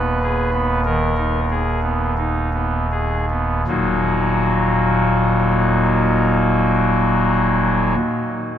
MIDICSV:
0, 0, Header, 1, 2, 480
1, 0, Start_track
1, 0, Key_signature, -6, "minor"
1, 0, Tempo, 1250000
1, 324, Tempo, 1333333
1, 804, Tempo, 1500000
1, 1283, Time_signature, 4, 2, 24, 8
1, 2853, End_track
2, 0, Start_track
2, 0, Title_t, "Pipe organ"
2, 0, Program_c, 0, 19
2, 0, Note_on_c, 0, 27, 70
2, 0, Note_on_c, 0, 39, 70
2, 0, Note_on_c, 0, 59, 51
2, 0, Note_on_c, 0, 71, 106
2, 72, Note_off_c, 0, 59, 0
2, 87, Note_on_c, 0, 68, 57
2, 192, Note_off_c, 0, 68, 0
2, 205, Note_on_c, 0, 59, 53
2, 310, Note_off_c, 0, 71, 0
2, 312, Note_off_c, 0, 59, 0
2, 326, Note_on_c, 0, 70, 79
2, 328, Note_on_c, 0, 51, 49
2, 429, Note_off_c, 0, 51, 0
2, 440, Note_on_c, 0, 63, 49
2, 524, Note_off_c, 0, 70, 0
2, 545, Note_off_c, 0, 63, 0
2, 560, Note_on_c, 0, 68, 54
2, 667, Note_off_c, 0, 68, 0
2, 678, Note_on_c, 0, 59, 47
2, 790, Note_off_c, 0, 59, 0
2, 803, Note_on_c, 0, 63, 49
2, 906, Note_off_c, 0, 63, 0
2, 918, Note_on_c, 0, 59, 46
2, 1026, Note_off_c, 0, 59, 0
2, 1039, Note_on_c, 0, 68, 49
2, 1149, Note_off_c, 0, 68, 0
2, 1164, Note_on_c, 0, 59, 46
2, 1266, Note_off_c, 0, 59, 0
2, 1271, Note_off_c, 0, 27, 0
2, 1271, Note_off_c, 0, 39, 0
2, 1282, Note_on_c, 0, 27, 57
2, 1282, Note_on_c, 0, 39, 54
2, 1283, Note_on_c, 0, 46, 44
2, 1283, Note_on_c, 0, 58, 46
2, 1284, Note_on_c, 0, 54, 44
2, 1284, Note_on_c, 0, 63, 45
2, 1285, Note_on_c, 0, 66, 62
2, 2650, Note_off_c, 0, 27, 0
2, 2650, Note_off_c, 0, 39, 0
2, 2651, Note_off_c, 0, 46, 0
2, 2652, Note_off_c, 0, 54, 0
2, 2652, Note_off_c, 0, 58, 0
2, 2652, Note_off_c, 0, 63, 0
2, 2653, Note_off_c, 0, 66, 0
2, 2853, End_track
0, 0, End_of_file